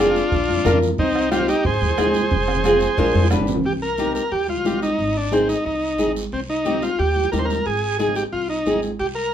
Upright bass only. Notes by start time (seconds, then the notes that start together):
Already playing: F1
0.32 A#1
0.49 F2
0.66 F2
0.99 C2
1.65 G#1
1.82 D#2
1.98 D#2
2.31 F1
2.98 A#1
3.15 F2
3.31 G1
3.64 C2
4.32 D#2
4.65 A#1
4.98 G#1
5.65 C2
5.99 G#1
6.32 C2
6.99 D#2
7.33 D#2
7.66 G#1
8.33 C2
8.66 G#1
9.00 C2